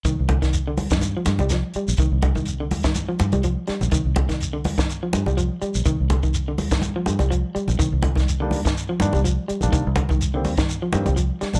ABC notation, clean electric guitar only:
X:1
M:4/4
L:1/16
Q:"Swing 16ths" 1/4=124
K:Cm
V:1 name="Clean electric guitar" clef=bass
E,2 D, E,2 D,2 E,2 F,2 G, F,2 G,2 | E,2 D, E,2 D,2 E,2 F,2 G, F,2 G,2 | E,2 D, E,2 D,2 E,2 F,2 G, F,2 G,2 | E,2 D, E,2 D,2 E,2 F,2 G, F,2 G,2 |
E,2 D, E,2 D,2 E,2 F,2 G, F,2 G,2 | E,2 D, E,2 D,2 E,2 F,2 G, F,2 G,2 |]